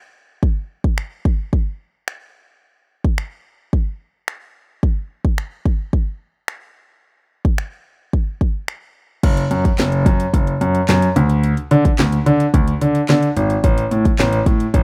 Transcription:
0.43 kick
0.84 kick
0.98 finger snap
1.25 kick
1.53 kick
2.08 finger snap
3.04 kick
3.18 finger snap
3.73 kick
4.28 finger snap
4.83 kick
5.25 kick
5.38 finger snap
5.66 kick
5.93 kick
6.48 finger snap
7.45 kick
7.58 finger snap
8.13 kick
8.41 kick
8.68 finger snap
9.23 F#1, kick, closed hi-hat, crash
9.37 closed hi-hat
9.51 F#2, closed hi-hat
9.65 kick, closed hi-hat
9.78 F#1, snare, clap, closed hi-hat
9.92 closed hi-hat
10.06 F#2, kick, closed hi-hat
10.20 closed hi-hat
10.34 F#1, kick, closed hi-hat
10.47 closed hi-hat
10.61 F#2, closed hi-hat
10.75 closed hi-hat
10.89 F#2, snare, clap, closed hi-hat
11.02 closed hi-hat
11.16 D2, closed hi-hat
11.30 closed hi-hat
11.44 closed hi-hat
11.57 closed hi-hat
11.71 D3, closed hi-hat
11.85 kick, closed hi-hat
11.99 D2, snare, clap, closed hi-hat
12.12 closed hi-hat
12.26 D3, closed hi-hat
12.40 closed hi-hat
12.54 D2, kick, closed hi-hat
12.68 closed hi-hat
12.81 D3, closed hi-hat
12.95 closed hi-hat
13.09 D3, snare, clap, closed hi-hat
13.23 closed hi-hat
13.36 G#1, closed hi-hat
13.50 closed hi-hat
13.64 A1, kick, closed hi-hat
13.78 closed hi-hat
13.91 A2, closed hi-hat
14.05 kick, closed hi-hat
14.19 A1, snare, clap, closed hi-hat
14.33 closed hi-hat
14.46 A2, kick, closed hi-hat
14.60 closed hi-hat
14.74 A1, kick, closed hi-hat

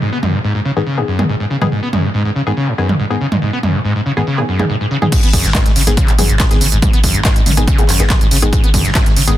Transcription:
Already playing: downlifter
0.02 G#2
0.13 B3
0.23 F#2, mid tom
0.34 G#2
0.44 G#2
0.55 G#2
0.65 C#3
0.76 G#2 D#3 B3 G#4
0.86 C#3
0.98 G#2 D#3 B3 G#4
1.08 F#2
1.19 G#2 D#3 B3 G#4, mid tom
1.29 G#2
1.40 G#2
1.50 C#3
1.62 G#2 D#3 B3 G#4, mid tom
1.72 G#2
1.83 B3
1.93 F#2, mid tom
2.04 G#2
2.14 G#2
2.25 G#2
2.36 C#3
2.47 G#2 D#3 B3 G#4
2.57 C#3
2.68 G#2
2.78 F#2 D#3 B3 G#4
2.89 G#2, mid tom
3.00 G#2
3.10 G#2 D#3 B3 G#4
3.21 C#3
3.32 G#2, mid tom
3.42 G#2
3.53 B3
3.63 F#2, mid tom
3.74 G#2
3.85 G#2
3.96 G#2
4.06 C#3
4.17 G#2 D#3 B3 G#4
4.27 C#3
4.38 G#2 D#3 B3 G#4
4.49 F#2
4.59 G#2 D#3 B3 G#4, mid tom
4.70 G#2
4.81 G#2
4.91 C#3
5.02 G#2 D#3 B3 G#4, mid tom
5.12 G#2, kick, closed hi-hat, crash, tambourine
5.23 G#1 B3, closed hi-hat
5.33 G#1 F#2, kick, open hi-hat, tambourine
5.44 G#1 G#2, snare, closed hi-hat
5.55 G#2, kick, snare, clap, closed hi-hat, mid tom, tambourine
5.66 G#1 G#2, snare, closed hi-hat
5.76 G#1 C#3, snare, open hi-hat, tambourine
5.87 G#1 G#2 D#3 B3 G#4, closed hi-hat
5.97 C#3, kick, closed hi-hat, tambourine
6.08 G#1 G#2, clap, closed hi-hat
6.18 G#1 F#2 D#3 B3 G#4, snare, mid tom, open hi-hat, tambourine
6.29 G#1 G#2, closed hi-hat
6.40 G#2, kick, snare, clap, closed hi-hat, tambourine
6.51 G#1 G#2 D#3 B3 G#4, snare, closed hi-hat
6.61 G#1 C#3, open hi-hat, tambourine
6.72 G#1 G#2, closed hi-hat
6.82 G#2, kick, closed hi-hat, mid tom, tambourine
6.93 G#1 B3, closed hi-hat
7.04 G#1 F#2, kick, open hi-hat, tambourine
7.15 G#1 G#2, closed hi-hat
7.25 G#2, kick, snare, clap, closed hi-hat, tambourine
7.36 G#1 G#2, closed hi-hat
7.46 G#1 C#3, mid tom, open hi-hat, tambourine
7.57 G#1 G#2 D#3 B3 G#4, closed hi-hat
7.68 C#3, kick, closed hi-hat, tambourine
7.79 G#1 G#2 D#3 B3 G#4, closed hi-hat
7.89 G#1 F#2, snare, clap, open hi-hat, tambourine
8.00 G#1 G#2 D#3 B3 G#4, snare, closed hi-hat
8.10 G#2, kick, snare, clap, closed hi-hat, mid tom, tambourine
8.21 G#1 G#2, closed hi-hat
8.31 G#1 C#3, snare, open hi-hat, tambourine
8.42 G#1 G#2 D#3 B3 G#4, closed hi-hat
8.53 G#2, kick, closed hi-hat, tambourine
8.64 G#1 B3, closed hi-hat
8.74 G#1 F#2, kick, mid tom, open hi-hat, tambourine
8.85 G#1 G#2, snare, closed hi-hat
8.95 G#2, kick, snare, clap, closed hi-hat, tambourine
9.06 G#1 G#2, snare, closed hi-hat
9.16 G#1 C#3, snare, open hi-hat, tambourine
9.28 G#1 G#2 D#3 B3 G#4, closed hi-hat

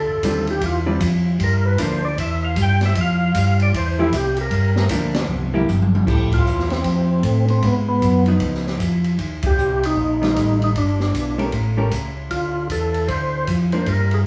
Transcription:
Already playing: A4
0.10 D2
0.23 D#2 D3 G3 C4 F4, kick, hi-hat pedal, ride
0.47 G4, ride
0.61 E2, kick, ride
0.66 F4
0.86 D3 G3 C4 F4
1.00 F2, kick, hi-hat pedal, ride
1.39 G2, kick, ride
1.44 A#4
1.66 B4
1.78 D2 F3 A#3 D4, kick, hi-hat pedal, ride
1.83 C5
2.05 D5
2.18 E2 E5, kick, ride
2.45 F5
2.56 G2, kick, hi-hat pedal, ride
2.62 G5
2.81 snare, ride
2.85 E5
2.95 F2, kick, ride
3.01 F5
3.34 G2, kick, hi-hat pedal, ride
3.60 D5, ride
3.74 E2 C5, kick, ride
3.99 F3 A3 E4 G4
4.13 C2 G4, kick, hi-hat pedal, ride
4.37 ride
4.41 A#4
4.51 G2, kick, ride
4.76 snare
4.89 D2 F3 A#3 D4, kick, hi-hat pedal, ride
5.14 snare, ride
5.28 C2, high tom
5.43 high tom
5.54 A#3 E4 G4, high tom
5.67 G1, hi-hat pedal, high tom
5.82 high tom
5.95 high tom
6.07 A1 F3 A3 E4 G4, kick, crash
6.32 F4, kick, ride
6.45 E2, hi-hat pedal
6.59 snare
6.70 C4, snare, ride
6.84 F2, kick, ride
7.23 A2, kick, hi-hat pedal, ride
7.48 C4, ride
7.62 G#2 B3, kick, ride
7.89 B3
8.02 F#2, kick, hi-hat pedal, ride
8.26 F3 B3 D#4, ride
8.40 C#2, kick, ride
8.54 snare
8.67 snare
8.80 F2, kick, hi-hat pedal, ride
9.04 ride
9.19 D#2, kick, ride
9.43 D#2 G4, kick, ride
9.57 C2, hi-hat pedal
9.83 D#4, ride
9.97 A#1, kick
10.22 D#3 G3 F4, snare, ride
10.36 A1, kick, hi-hat pedal, ride
10.62 D#4, ride
10.75 G1 D4, kick, ride
11.00 D4, snare
11.14 B1, kick, hi-hat pedal, ride
11.38 A3 C#4 G4 A#4, ride
11.52 A1, kick, ride
11.77 A3 C#4 G4 A#4
11.91 C#2, kick, hi-hat pedal, ride
12.31 D2 F4, kick, ride
12.70 E2 A4, kick, hi-hat pedal, ride
12.94 ride
13.08 D2 C5, kick, ride
13.47 F2, kick, hi-hat pedal, ride
13.72 F3 A#3 D4 C5, ride
13.86 G2 A#4, kick, ride
14.11 G#4, ride

